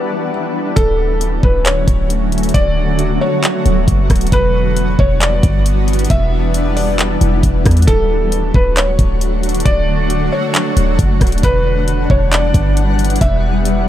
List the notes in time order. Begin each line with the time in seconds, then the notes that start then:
Already playing: E3 G3 B3 D4 E4 D5 F#5
0.76 D1 D3 F#3 A3 C#4 F#4 A4, kick, closed hi-hat
1.21 closed hi-hat
1.43 D1 B4, kick
1.66 C#5, clap, closed hi-hat
1.88 D1, kick, closed hi-hat
2.10 closed hi-hat
2.32 closed hi-hat
2.38 closed hi-hat
2.43 closed hi-hat
2.49 closed hi-hat
2.54 D1 B3 D5, kick, closed hi-hat
2.99 closed hi-hat
3.21 C#5
3.43 clap, closed hi-hat
3.66 D1, closed hi-hat
3.88 F#1, kick, closed hi-hat
4.10 D1, kick, cross-stick, closed hi-hat
4.16 closed hi-hat
4.21 closed hi-hat
4.27 closed hi-hat
4.32 E1 E3 G3 B3 D4 B4, kick, closed hi-hat
4.77 closed hi-hat
4.99 E1 C#5, kick
5.21 D5, clap, closed hi-hat
5.43 G1, kick, closed hi-hat
5.66 closed hi-hat
5.88 closed hi-hat
5.93 closed hi-hat
5.99 closed hi-hat
6.05 closed hi-hat
6.10 E1 E4 E5, kick, closed hi-hat
6.54 closed hi-hat
6.76 D5, open hi-hat
6.99 clap, closed hi-hat
7.21 E1, closed hi-hat
7.43 E1, kick, closed hi-hat
7.66 E2, kick, cross-stick, closed hi-hat
7.71 closed hi-hat
7.77 closed hi-hat
7.82 closed hi-hat
7.87 D1 D3 F#3 A3 D4 F#4 A4 F#5 C#6, kick, closed hi-hat
8.32 closed hi-hat
8.54 D1 B4, kick
8.77 C#5, clap, closed hi-hat
8.99 D1, kick, closed hi-hat
9.21 closed hi-hat
9.43 closed hi-hat
9.49 closed hi-hat
9.55 closed hi-hat
9.60 closed hi-hat
9.65 D1 D5, kick, closed hi-hat
10.10 closed hi-hat
10.32 C#5
10.55 clap, closed hi-hat
10.77 D1, closed hi-hat
10.99 F#1, kick, closed hi-hat
11.21 D1, kick, cross-stick, closed hi-hat
11.27 closed hi-hat
11.32 closed hi-hat
11.38 closed hi-hat
11.43 E1 E3 G3 B3 D4 G4 B4 F#5, kick, closed hi-hat
11.88 closed hi-hat
12.10 E1 C#5, kick
12.32 D5, clap, closed hi-hat
12.54 G1, kick, closed hi-hat
12.77 closed hi-hat
12.99 closed hi-hat
13.05 closed hi-hat
13.10 closed hi-hat
13.16 closed hi-hat
13.21 E1 D4 E5, kick, closed hi-hat
13.65 closed hi-hat